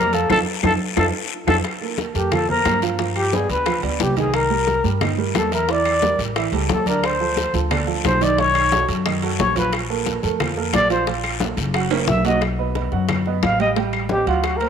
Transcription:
Already playing: F2 A#4
0.13 F3 F4 A4 F5, high bongo, high conga, high timbale, short guiro
0.30 F2 D#4 F4 A4, low bongo, high conga, high timbale, long guiro, claves
0.63 F2 D#4 F4 A4, low bongo, high conga, high timbale, long guiro, claves
0.96 F2 D#4 F4 A4, low bongo, high conga, high timbale, long guiro, claves
1.47 F2 D#4 F4 A4, low bongo, high conga, high timbale, long guiro, claves
1.64 high bongo, high conga, high timbale, long guiro, claves
1.81 A#3 A4 A#4, high conga
1.98 high bongo, high conga, high timbale, low timbale, short guiro
2.15 F2 A3 G4 A4 A#4, high bongo, high conga, short guiro
2.32 F3 F4 A4 F5, high bongo, high conga, low conga, high timbale, long guiro, claves
2.48 A#3 A#4 C5, high bongo, high conga, low conga
2.65 G2, high bongo, low bongo, high conga, high timbale, low timbale, short guiro, claves
2.82 F3 F4 F5, high bongo, high conga, high timbale, short guiro
2.99 F3 F4 F5, high bongo, high conga, high timbale, long guiro
3.16 G4, high bongo, high conga, high timbale, claves
3.32 B3 G#4 B4 D5, high bongo, high conga, low timbale, short guiro
3.49 D2 B4, high bongo, high conga, high timbale, short guiro
3.66 F3 F4 F5, high bongo, high conga, high timbale, long guiro, claves
3.83 D2 B3 B4 D5, high bongo, high conga, high timbale
4.00 C2 G4, high bongo, low bongo, high conga, low timbale, short guiro
4.16 D#3 D#4 G#4 D#5, high conga, high timbale, short guiro
4.34 A#4, high bongo, high conga, high timbale, long guiro, claves
4.50 G3 G4 A#4, high conga
4.67 high bongo, high conga, high timbale, low timbale, short guiro
4.84 G2 G3 G4 A#4, high bongo, high conga, short guiro
5.01 D#3 D#4 D#5, high bongo, high conga, low conga, high timbale, long guiro, claves
5.18 G3 G4 A#4, high bongo, high conga
5.35 E2 A4, high bongo, low bongo, high conga, high timbale, low timbale, short guiro, claves
5.52 E3 E4 A#4 E5, high bongo, high conga, high timbale, short guiro
5.69 E3 E4 D5 E5, high bongo, high conga, high timbale, long guiro
5.85 high bongo, high conga, high timbale, claves
6.02 G3 G4 A#4, high bongo, high conga, low timbale, short guiro
6.19 A1, high bongo, high conga, high timbale, short guiro
6.36 E3 E4 E5, high bongo, high conga, high timbale, long guiro, claves
6.52 C#2 G3 G4 A4, high bongo, high conga, high timbale
6.69 D2 A4, high bongo, low bongo, high conga, low timbale, short guiro
6.86 D3 D4 A#4 D5, high conga, high timbale, short guiro
7.03 C5, high bongo, high conga, high timbale, long guiro, claves
7.20 F3 F4 A4, high conga
7.37 high bongo, high conga, high timbale, low timbale, short guiro
7.54 D2 F3 F4 A4, high bongo, high conga, short guiro
7.71 D3 D4 D5, high bongo, high conga, low conga, high timbale, long guiro, claves
7.87 F3 F4 A4, high bongo
8.05 B1 C5, high bongo, low bongo, high conga, high timbale, low timbale, short guiro, claves
8.21 D#3 D#4 D5 D#5, high bongo, high timbale, short guiro
8.38 D#3 D#4 C#5 D#5, high bongo, high timbale, long guiro
8.55 high bongo, high conga, high timbale, claves
8.72 F#3 F#4 A4, high bongo, high conga, low timbale, short guiro
8.88 F#2, high bongo, high conga, high timbale, short guiro
9.06 D#3 D#4 D#5, high bongo, high conga, high timbale, long guiro, claves
9.22 F#3 F#4 A4, high bongo, high conga, high timbale
9.39 A#1 C#5, high bongo, low bongo, high conga, low timbale, short guiro
9.56 F3 F4 B4 F5, high conga, high timbale, short guiro
9.73 high bongo, high conga, high timbale, long guiro, claves
9.90 A#3 A4 A#4, high conga
10.06 high bongo, high conga, high timbale, low timbale, short guiro
10.23 F2 A3 A4 A#4, high bongo, high conga, short guiro
10.40 F3 F4 F5, high bongo, high conga, low conga, high timbale, long guiro, claves
10.57 A#3 A4 A#4, high bongo, high conga
10.73 A#1 D5, high bongo, low bongo, high conga, high timbale, low timbale, short guiro, claves
10.90 F3 F4 C5 F5, high bongo, high conga, high timbale, short guiro
11.07 F3 F4 F5, high bongo, high conga, high timbale, long guiro
11.23 high bongo, high conga, high timbale, claves
11.40 A#3 A4 A#4, high bongo, high conga, low timbale, short guiro
11.57 F#1, high bongo, high conga, high timbale, short guiro
11.74 F#3 F#4 F#5, high bongo, high conga, high timbale, long guiro, claves
11.90 A#3 A#4 C#5, high bongo, high conga, high timbale
12.07 B1 E5, high bongo, low bongo, high conga, low timbale, short guiro
12.25 F#3 F#4 D#5 F#5, high conga, low timbale, short guiro
12.41 high bongo, high conga, high timbale, claves
12.59 B3 B4 D#5, high conga
12.75 B3 B4 D#5, high bongo, high conga, high timbale, low timbale
12.92 F#2 F#3 F#4 F#5, high bongo, high conga
13.09 high bongo, high conga, low conga, high timbale, claves
13.26 B3 B4 D#5, high bongo, high conga
13.42 A1 F5, high bongo, low bongo, high conga, high timbale, low timbale, claves
13.59 G3 G4 D#5 G5, high bongo, high conga, high timbale
13.76 G3 G4 G5, high bongo, high conga, high timbale
13.93 high bongo, high conga, high timbale, claves
14.09 C4 G4 C5 D#5, high bongo, high conga, low timbale
14.26 D2 F#3 F4 F#4 F#5, high bongo, high conga, high timbale
14.44 F#4, high bongo, high conga, high timbale, claves
14.57 A#4, high bongo
14.61 A#3 A#4 C5, high conga, high timbale

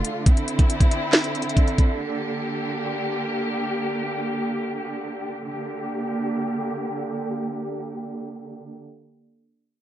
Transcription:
Already playing: D3 A3 F4
0.05 closed hi-hat
0.26 C4 E4, kick, closed hi-hat
0.37 closed hi-hat
0.48 closed hi-hat
0.59 kick, closed hi-hat
0.70 closed hi-hat
0.81 kick, closed hi-hat
0.91 closed hi-hat
1.13 snare, clap, closed hi-hat
1.24 closed hi-hat
1.35 closed hi-hat
1.42 closed hi-hat
1.49 closed hi-hat
1.57 kick, closed hi-hat
1.68 closed hi-hat
1.78 kick, closed hi-hat
2.00 A#3 G4
5.48 D3 A#3 G4

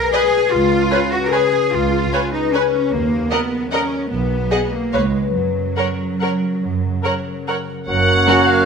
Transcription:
Already playing: B2 G#3 B3 G#4 A#4 B4
0.13 G#4 B4 D#5 G#5
0.34 G#3
0.52 C#2 C#3 F4
0.72 C#4
0.91 G#4 B4 C#5 G#5
1.12 F#4 B4
1.25 A#4
1.32 G#4 B4 C#5 G#5
1.54 G#3
1.72 C#2 C#3 F4
1.93 C#4
2.13 G#4 B4 C#5 G#5
2.33 D#4 B4
2.54 C#4 G#4 B4 C#5 G#5
2.74 G#3
2.92 D#2 D#3 A#3
3.11 F#3
3.30 B3 A#4 D#5 F#5
3.51 F#4
3.72 C#4 A#4 D#5 F#5
3.92 D#4
4.10 B1 B2 B3
4.30 B3
4.50 D#4 G#4 D#5 F#5
4.72 A#3 G#4
4.93 C#2 C#3 G#3 B4 C#5 F5
5.14 C#4 B4
5.34 F#2 F#3
5.55 C#3
5.77 C#4 A#4 C#5 F#5
6.00 A#4
6.20 C#4 A#4 C#5 F#5
6.43 F#3
6.63 F#2
6.84 C#3
7.04 C#4 A#4 C#5 F#5
7.27 A#4
7.47 C#4 A#4 C#5 F#5
7.69 F#3
7.87 F#1 F#2 F#3 A#3 C#4 A#4 C#5 F#5 F#6
8.07 F#3
8.27 F#3 C#4 F#4 A#4
8.47 F#4 F5

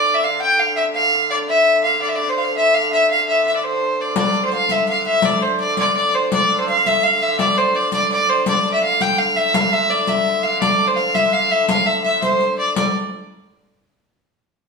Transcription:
Already playing: D3 D5
0.14 E5
0.24 F5
0.41 G5
0.59 F5
0.76 E5
0.94 F5
1.30 D5
1.48 E5
1.83 F5
2.01 D5
2.08 E5
2.15 D5
2.29 C5
2.38 F5
2.56 E5
2.75 F5
2.92 E5
3.10 F5
3.28 E5
3.46 E5
3.55 D5
3.64 C5
4.01 D5
4.16 D3 D5, riq
4.34 riq
4.45 C5
4.51 F5, riq
4.69 E5, riq
4.87 F5, riq
5.05 E5, riq
5.22 D5, riq
5.40 C5, riq
5.59 D5, riq
5.77 D5, riq
5.95 D5, riq
6.13 C5, riq
6.32 D5, riq
6.50 riq
6.60 C5
6.68 F5, riq
6.86 E5, riq
7.03 F5, riq
7.22 E5, riq
7.39 D5, riq
7.57 C5, riq
7.74 D5, riq
7.92 D5, riq
8.11 D5, riq
8.29 C5, riq
8.46 D3 D5, riq
8.65 riq
8.73 E5
8.83 F5, riq
9.01 G5, riq
9.18 F5, riq
9.36 E5, riq
9.54 F5, riq
9.72 E5, riq
9.90 D5, riq
10.07 E5, riq
10.26 riq
10.43 F5, riq
10.61 D5, riq
10.79 riq
10.87 C5
10.96 F5, riq
11.14 E5, riq
11.33 F5, riq
11.51 E5, riq
11.68 F5, riq
11.86 E5
12.04 E5, riq
12.22 C5, riq
12.41 riq
12.59 D5
12.76 D5, riq

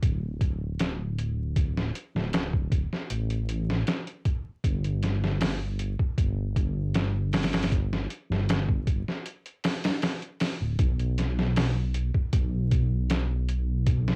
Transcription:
0.03 D1, kick, closed hi-hat
0.41 kick, closed hi-hat
0.80 snare, closed hi-hat
1.19 closed hi-hat
1.56 kick, closed hi-hat
1.78 snare
1.95 closed hi-hat
2.15 D1, snare
2.33 snare, closed hi-hat
2.53 kick
2.72 kick, closed hi-hat
2.93 snare
3.10 A1, closed hi-hat
3.30 closed hi-hat
3.49 closed hi-hat
3.70 snare
3.87 snare, closed hi-hat
4.07 closed hi-hat
4.25 kick, closed hi-hat
4.64 G1, kick, closed hi-hat
4.84 closed hi-hat
5.03 snare, closed hi-hat
5.24 snare
5.41 snare, open hi-hat
5.79 closed hi-hat
5.99 kick
6.18 G1, kick, closed hi-hat
6.56 kick, closed hi-hat
6.94 snare, closed hi-hat
7.33 snare, open hi-hat
7.43 snare, open hi-hat
7.53 snare, open hi-hat
7.63 snare, open hi-hat
7.72 kick, closed hi-hat
7.93 snare
8.10 closed hi-hat
8.30 G1, snare
8.49 snare, closed hi-hat
8.69 kick
8.87 kick, closed hi-hat
9.08 snare
9.26 closed hi-hat
9.46 closed hi-hat
9.64 snare, open hi-hat
9.84 snare, open hi-hat
10.02 snare, open hi-hat
10.22 closed hi-hat
10.40 snare, open hi-hat
10.61 D1
10.79 B1, kick, closed hi-hat
11.00 closed hi-hat
11.18 snare, closed hi-hat
11.39 snare
11.56 snare, open hi-hat
11.94 closed hi-hat
12.14 kick
12.33 B1, kick, closed hi-hat
12.71 kick, closed hi-hat
13.10 snare, closed hi-hat
13.49 closed hi-hat
13.87 kick, closed hi-hat
14.08 snare

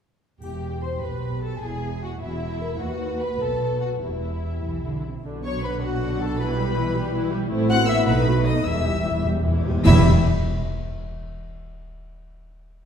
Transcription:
0.40 E1 E2 G4 G5, triangle
0.82 C5 C6
1.02 B1 B2 B4 B5
1.42 A4 A5
1.62 E1 E2 E4 G#4 G#5
2.02 F#4 F#5
2.20 E1 E2 E4 F#4 E5
2.42 G#4
2.62 A#4
2.80 D#2 F#4 B4 F#5
3.20 B4 B5
3.40 B1 B2 A4 A5
3.80 F#4 F#5
4.01 E1 E2 E4 G4 E5
4.64 B1 E3
4.85 D3
5.06 C3
5.25 B1 B2 D3 F#3 D4
5.44 F#3 B3 C#5 C#6
5.63 D3 D4 B4 B5
5.82 F#3 B3 F#4 F#5
6.02 D3 D4
6.20 F#3 B3 A4 A5
6.39 E3 G3 E4 B4 B5
6.57 G3 G4
6.77 E3 E4
6.95 G3 G4
7.15 E3 E4
7.33 G3 G4
7.51 A1 A2 A3 C4 E4
7.69 C4 F#4 F#5 F#6
7.79 B3
7.88 A3 E4 E5 E6
8.06 B1 B2 A3 B3 D#4 B4 B5
8.26 A3 F#4
8.45 B3 D#4 D#5 D#6
8.65 E1 E2 E3 G3 E4 E5 E6
8.74 E2
8.81 E2
8.85 E2 G3 G4
8.96 E2
9.03 E2 E3 E4
9.11 E2
9.19 E2
9.25 E2 G3 G4
9.33 E2
9.40 E2
9.46 E2 E3 E4
9.55 E2
9.63 E2 G3 G4
9.71 E2
9.79 E2
9.85 E1 E2 G3 E4 E5 E6, concert bass drum, crash

